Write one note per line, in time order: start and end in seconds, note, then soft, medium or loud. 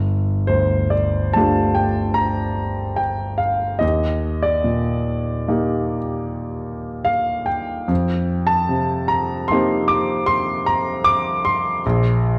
0.00 3.77 G1 soft
0.47 1.85 D2 soft
0.47 0.93 C5 medium
0.90 1.35 D5 soft
1.33 3.78 A3 soft
1.33 3.78 D4 soft
1.33 3.78 F4 soft
1.33 1.76 A5 medium
1.37 3.79 G4 soft
1.75 2.17 G5 medium
2.14 2.98 A#5 medium
2.96 3.40 G5 medium
3.38 3.81 F5 medium
3.79 7.85 D#2 soft
3.79 4.42 D#5 medium
4.43 7.08 D5 medium
4.64 5.97 A#2 soft
5.48 7.86 A#3 soft
5.48 7.86 D#4 soft
5.48 7.86 G4 soft
7.05 7.47 F5 medium
7.46 8.48 G5 medium
7.88 11.79 F2 soft
8.47 9.08 A5 medium
8.69 9.96 C3 soft
9.08 9.49 A#5 medium
9.48 11.81 A#3 soft
9.48 11.81 D#4 soft
9.48 9.88 C6 medium
9.52 11.82 C4 soft
9.52 11.82 G4 soft
9.88 10.28 D6 medium
10.26 10.67 C6 medium
10.66 11.06 A#5 medium
11.04 11.45 D6 medium
11.45 12.39 C6 medium
11.86 12.39 A#1 medium